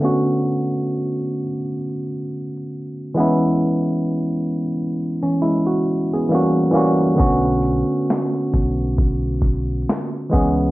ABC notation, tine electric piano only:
X:1
M:4/4
L:1/16
Q:"Swing 16ths" 1/4=67
K:Bdor
V:1 name="Tine electric piano"
z16 | z6 z [E,C] [G,E] F2 [B,G]2 z3 | z16 |]
V:2 name="Tine electric piano"
[D,A,B,CF]6 z8 [E,G,B,CE]2- | [E,G,B,CE]4 z8 [E,=G,^A,CF]2 [E,G,A,CF]2 | [D,A,B,CF]6 z8 [E,G,B,CG]2 |]